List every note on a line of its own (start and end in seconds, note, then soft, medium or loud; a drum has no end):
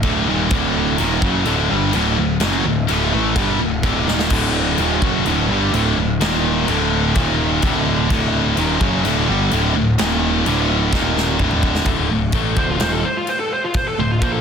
0.03 0.26 D1 loud
0.03 0.25 D2 medium
0.03 0.26 A2 loud
0.03 0.26 D3 loud
0.03 kick medium
0.03 china medium
0.26 0.50 D#1 medium
0.26 0.49 D#2 medium
0.26 0.50 A#2 loud
0.26 0.50 D#3 loud
0.50 0.95 D1 loud
0.50 0.97 D2 loud
0.50 0.98 A2 loud
0.50 0.98 D3 loud
0.50 kick loud
0.50 china medium
0.98 1.21 D#1 medium
0.98 1.21 D#2 medium
0.98 1.22 A#2 loud
0.98 1.22 D#3 loud
0.98 china medium
1.22 1.45 F#1 medium
1.22 1.45 F#2 medium
1.22 1.45 C#3 loud
1.22 1.46 F#3 loud
1.22 kick loud
1.46 1.68 D1 loud
1.46 1.69 D2 medium
1.46 1.69 A2 loud
1.46 1.69 D3 loud
1.46 china medium
1.70 1.93 G1 loud
1.70 1.92 G2 loud
1.70 1.92 D3 loud
1.70 1.93 G3 loud
1.93 2.16 D1 loud
1.93 2.16 D2 loud
1.93 2.16 A2 loud
1.93 2.17 D3 loud
1.93 china medium
2.17 2.40 D1 medium
2.17 2.36 D2 medium
2.17 2.36 A2 medium
2.40 2.64 F#1 loud
2.40 2.63 F#2 medium
2.40 2.64 C#3 loud
2.40 2.64 F#3 loud
2.40 snare loud
2.40 china medium
2.65 2.87 D1 loud
2.65 2.84 D2 medium
2.65 2.84 A2 medium
2.87 3.11 D1 medium
2.87 3.11 D2 medium
2.87 3.11 A2 medium
2.87 3.12 D3 loud
2.87 china medium
3.12 3.35 A1 loud
3.12 3.35 A2 loud
3.12 3.35 E3 loud
3.12 3.35 A3 loud
3.35 3.58 G1 medium
3.35 3.59 G2 medium
3.35 3.59 D3 loud
3.35 3.59 G3 loud
3.35 kick medium
3.35 china medium
3.60 3.82 D1 medium
3.60 3.79 D2 medium
3.60 3.79 A2 medium
3.83 4.05 D1 loud
3.83 4.06 D2 loud
3.83 4.07 A2 loud
3.83 4.07 D3 loud
3.83 kick medium
3.83 china medium
4.07 4.30 D#1 loud
4.07 4.30 D#2 medium
4.07 4.31 A#2 loud
4.07 4.31 D#3 loud
4.07 snare medium
4.19 snare loud
4.30 4.75 D1 loud
4.30 4.78 D2 medium
4.30 4.78 A2 loud
4.30 4.78 D3 loud
4.30 kick loud
4.30 china medium
4.30 crash loud
4.78 5.00 D#1 medium
4.78 5.01 D#2 loud
4.78 5.02 A#2 loud
4.78 5.02 D#3 medium
4.78 china medium
5.02 5.24 F#1 medium
5.02 5.25 F#2 loud
5.02 5.26 C#3 medium
5.02 5.26 F#3 loud
5.02 kick medium
5.25 5.47 D1 loud
5.25 5.49 D2 medium
5.25 5.49 A2 loud
5.25 5.49 D3 loud
5.25 china medium
5.48 5.71 G1 loud
5.48 5.73 G2 medium
5.48 5.73 D3 medium
5.48 5.74 G3 loud
5.72 5.95 D1 loud
5.72 5.97 D2 loud
5.72 5.97 A2 loud
5.72 5.97 D3 loud
5.72 china medium
5.97 6.19 D1 medium
5.97 6.17 D2 medium
5.97 6.17 A2 medium
6.21 6.65 D#1 loud
6.21 6.67 D#2 medium
6.21 6.68 A#2 loud
6.21 6.68 D#3 loud
6.21 snare loud
6.21 china medium
6.68 7.12 D1 loud
6.68 7.15 D2 medium
6.68 7.16 A2 medium
6.68 7.16 D3 loud
6.68 china medium
7.15 7.60 D#1 loud
7.15 7.62 D#2 medium
7.15 7.63 A#2 loud
7.15 7.63 D#3 loud
7.15 kick medium
7.15 china medium
7.62 8.07 D1 medium
7.62 8.09 D2 loud
7.62 8.10 A2 loud
7.62 8.10 D3 loud
7.62 kick loud
7.62 china medium
8.10 8.54 D1 loud
8.10 8.57 D2 loud
8.10 8.57 A2 loud
8.10 8.57 D3 loud
8.10 kick loud
8.10 china medium
8.57 8.79 D#1 medium
8.57 8.81 D#2 medium
8.57 8.81 A#2 loud
8.57 8.81 D#3 loud
8.57 china medium
8.81 9.03 F#1 medium
8.81 9.04 F#2 medium
8.81 9.04 C#3 loud
8.81 9.05 F#3 loud
8.81 kick medium
9.05 9.27 D1 medium
9.05 9.28 D2 loud
9.05 9.28 A2 loud
9.05 9.28 D3 loud
9.05 china medium
9.29 9.50 G1 loud
9.29 9.52 G2 loud
9.29 9.52 D3 loud
9.29 9.52 G3 loud
9.51 9.74 D1 loud
9.51 9.75 D2 loud
9.51 9.75 A2 loud
9.51 9.75 D3 loud
9.51 china medium
9.75 9.97 D1 medium
9.75 9.94 D2 medium
9.75 9.95 A2 medium
9.98 10.43 D#1 loud
9.98 10.45 D#2 loud
9.98 10.46 A#2 loud
9.98 10.46 D#3 loud
9.98 snare loud
9.98 china medium
10.46 10.90 D1 medium
10.46 10.92 D2 medium
10.46 10.92 A2 loud
10.46 10.92 D3 loud
10.46 china medium
10.93 11.37 D#1 loud
10.93 11.39 D#2 loud
10.93 11.40 A#2 loud
10.93 11.40 D#3 loud
10.93 kick medium
10.93 snare medium
11.17 snare medium
11.39 11.83 D1 loud
11.39 11.86 D2 loud
11.39 11.86 A2 loud
11.39 11.87 D3 loud
11.39 kick medium
11.39 mid tom medium
11.51 mid tom medium
11.63 kick loud
11.75 snare medium
11.85 12.08 D1 medium
11.85 12.10 D2 loud
11.85 12.10 A2 medium
11.85 12.10 D3 loud
11.85 kick loud
11.85 crash medium
12.11 12.32 D1 medium
12.11 12.29 D2 medium
12.11 12.30 A2 medium
12.32 12.55 A1 medium
12.32 12.57 A2 medium
12.32 12.57 E3 medium
12.32 12.57 A3 medium
12.32 kick loud
12.32 crash medium
12.57 12.79 D1 medium
12.57 12.80 D2 medium
12.57 12.80 A2 medium
12.57 12.81 D3 medium
12.57 12.69 C5 loud
12.57 kick loud
12.71 12.81 F4 medium
12.80 13.03 D#1 loud
12.80 13.04 D#2 medium
12.80 13.04 A#2 medium
12.80 13.04 D#3 loud
12.80 12.92 C5 medium
12.80 snare loud
12.80 crash medium
12.92 13.05 A4 medium
13.05 13.16 C5 medium
13.17 13.28 F4 medium
13.27 13.39 C5 medium
13.27 crash medium
13.40 13.51 A4 medium
13.53 13.64 C5 medium
13.64 13.75 F4 medium
13.74 13.87 C5 loud
13.74 kick loud
13.74 crash medium
13.88 14.00 A4 medium
13.99 14.21 D1 medium
13.99 14.18 D2 medium
13.99 14.18 A2 medium
13.99 14.11 C5 medium
14.12 14.23 F4 medium
14.21 14.41 A#1 loud
14.21 14.41 A#2 medium
14.21 14.41 F3 medium
14.21 14.41 A#3 medium
14.21 14.33 C5 medium
14.21 kick loud
14.21 crash medium
14.33 14.41 A4 medium